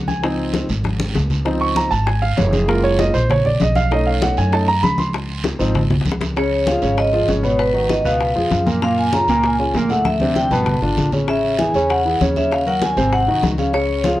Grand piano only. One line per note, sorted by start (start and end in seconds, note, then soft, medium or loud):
0.08 0.50 G#5 medium
0.23 0.66 F3 soft
0.23 0.67 C4 medium
0.23 0.67 D#4 medium
1.45 1.89 F3 medium
1.45 1.90 C4 medium
1.45 1.90 D#4 medium
1.61 1.76 C#6 loud
1.77 1.91 A#5 medium
1.91 2.06 A5 loud
2.06 2.22 G#5 medium
2.22 2.37 F5 loud
2.37 2.52 C#5 medium
2.52 2.68 G#4 medium
2.68 3.12 G#3 medium
2.68 3.12 A#3 soft
2.68 3.12 F4 medium
2.68 2.83 A#4 medium
2.83 2.98 C#5 loud
2.99 3.14 D#5 medium
3.14 3.29 C5 medium
3.30 3.45 C#5 medium
3.46 3.60 D5 medium
3.61 3.76 D#5 medium
3.76 3.91 F5 loud
3.91 4.51 A3 medium
3.91 4.51 C#4 soft
3.91 4.52 D#4 medium
3.91 4.06 D#5 medium
4.06 4.21 F5 medium
4.23 4.37 F#5 medium
4.38 4.52 G#5 medium
4.52 4.66 A3 soft
4.52 4.67 C#4 soft
4.52 4.67 D#4 medium
4.52 4.68 A5 medium
4.68 4.83 A#5 loud
4.83 4.98 B5 loud
4.98 5.41 C6 medium
5.59 5.80 F3 medium
5.59 5.80 C4 medium
5.59 5.81 D#4 medium
6.36 6.62 C#3 medium
6.36 6.62 C#4 medium
6.36 6.62 C#5 medium
6.67 6.80 F3 medium
6.67 6.80 F4 medium
6.67 6.80 G#4 medium
6.82 7.07 C#3 medium
6.82 7.08 C#4 medium
6.82 7.08 C#5 medium
7.13 7.26 F3 medium
7.13 7.26 F4 medium
7.13 7.26 G#4 medium
7.28 7.41 C#3 medium
7.28 7.41 C#4 medium
7.28 7.41 C#5 medium
7.43 7.69 B2 medium
7.43 7.69 B3 medium
7.43 7.69 B4 medium
7.74 7.99 D#3 medium
7.74 7.99 D#4 medium
7.74 8.00 F#4 medium
8.05 8.30 B2 medium
8.05 8.30 B3 medium
8.05 8.31 B4 medium
8.36 8.61 F3 medium
8.36 8.61 F4 medium
8.36 8.61 G#4 medium
8.66 8.79 A#2 medium
8.66 8.79 A#3 medium
8.66 8.79 A#4 medium
8.82 9.07 A#2 medium
8.82 9.08 A#3 medium
8.82 9.08 A#4 medium
9.13 9.26 C#3 medium
9.13 9.26 C#4 medium
9.13 9.26 F4 medium
9.29 9.54 A#2 medium
9.29 9.54 A#3 medium
9.29 9.54 A#4 medium
9.59 9.72 C#3 medium
9.59 9.72 C#4 medium
9.59 9.72 F4 medium
9.76 9.88 A#2 medium
9.76 9.88 A#3 medium
9.76 9.88 A#4 medium
9.90 10.15 A2 medium
9.90 10.16 A3 medium
9.90 10.16 A4 medium
10.21 10.46 C3 medium
10.21 10.46 C4 medium
10.21 10.46 D4 medium
10.51 10.76 B2 medium
10.51 10.77 B3 medium
10.51 10.77 B4 medium
10.82 11.07 D3 medium
10.82 11.07 D4 medium
10.82 11.07 F4 medium
11.13 11.25 C#3 medium
11.13 11.25 C#4 medium
11.13 11.26 C#5 medium
11.28 11.53 C#3 medium
11.28 11.54 C#4 medium
11.28 11.54 C#5 medium
11.59 11.71 E3 medium
11.59 11.72 E4 medium
11.59 11.72 G#4 medium
11.75 12.00 C#3 medium
11.75 12.00 C#4 medium
11.75 12.00 C#5 medium
12.05 12.17 E3 medium
12.05 12.17 E4 medium
12.05 12.18 G#4 medium
12.21 12.33 C#3 medium
12.21 12.33 C#4 medium
12.21 12.33 C#5 medium
12.36 12.61 C#3 medium
12.36 12.61 C#4 medium
12.36 12.61 C#5 medium
12.66 12.91 F#3 medium
12.66 12.92 F#4 medium
12.66 12.92 A#4 medium
12.97 13.22 C3 medium
12.97 13.22 C4 medium
12.97 13.22 C5 medium
13.28 13.53 D#3 medium
13.28 13.53 D#4 medium
13.28 13.53 F#4 medium
13.58 13.71 C#3 medium
13.58 13.71 C#4 medium
13.58 13.71 C#5 medium
13.73 13.98 C#3 medium
13.73 13.99 C#4 medium
13.73 13.99 C#5 medium
14.04 14.17 F3 medium
14.04 14.17 F4 medium
14.04 14.17 G#4 medium